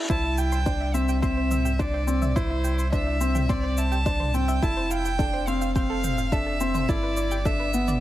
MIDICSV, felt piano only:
0, 0, Header, 1, 2, 480
1, 0, Start_track
1, 0, Key_signature, 0, "major"
1, 0, Tempo, 566038
1, 81, Time_signature, 4, 2, 24, 8
1, 6785, End_track
2, 0, Start_track
2, 0, Title_t, "Felt piano"
2, 0, Program_c, 0, 0
2, 83, Note_on_c, 0, 64, 90
2, 475, Note_off_c, 0, 64, 0
2, 560, Note_on_c, 0, 62, 83
2, 757, Note_off_c, 0, 62, 0
2, 799, Note_on_c, 0, 60, 84
2, 996, Note_off_c, 0, 60, 0
2, 1038, Note_on_c, 0, 60, 93
2, 1433, Note_off_c, 0, 60, 0
2, 1520, Note_on_c, 0, 62, 86
2, 1717, Note_off_c, 0, 62, 0
2, 1757, Note_on_c, 0, 60, 78
2, 1956, Note_off_c, 0, 60, 0
2, 1999, Note_on_c, 0, 64, 98
2, 2394, Note_off_c, 0, 64, 0
2, 2479, Note_on_c, 0, 62, 91
2, 2677, Note_off_c, 0, 62, 0
2, 2719, Note_on_c, 0, 60, 81
2, 2917, Note_off_c, 0, 60, 0
2, 2961, Note_on_c, 0, 60, 86
2, 3354, Note_off_c, 0, 60, 0
2, 3442, Note_on_c, 0, 62, 90
2, 3639, Note_off_c, 0, 62, 0
2, 3682, Note_on_c, 0, 60, 77
2, 3878, Note_off_c, 0, 60, 0
2, 3922, Note_on_c, 0, 64, 93
2, 4315, Note_off_c, 0, 64, 0
2, 4399, Note_on_c, 0, 62, 87
2, 4597, Note_off_c, 0, 62, 0
2, 4642, Note_on_c, 0, 60, 78
2, 4838, Note_off_c, 0, 60, 0
2, 4881, Note_on_c, 0, 60, 84
2, 5274, Note_off_c, 0, 60, 0
2, 5360, Note_on_c, 0, 62, 84
2, 5558, Note_off_c, 0, 62, 0
2, 5601, Note_on_c, 0, 60, 85
2, 5798, Note_off_c, 0, 60, 0
2, 5840, Note_on_c, 0, 64, 89
2, 6234, Note_off_c, 0, 64, 0
2, 6320, Note_on_c, 0, 62, 87
2, 6517, Note_off_c, 0, 62, 0
2, 6561, Note_on_c, 0, 59, 87
2, 6758, Note_off_c, 0, 59, 0
2, 6785, End_track
0, 0, End_of_file